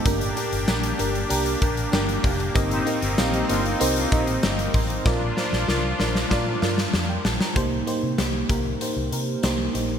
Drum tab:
HH |xxxx-xxxxxxx-xox|xxxx-xxxxxxx-xox|----------------|x-x-x-x-x-x-x-x-|
TB |----x-------x---|----x-------x---|----------------|----------------|
SD |----o-------o---|----o-------o---|o-ooo-ooo-ooo-oo|----o-------o---|
BD |o---------o---o-|o---------o---o-|o-------o-------|o-----o---------|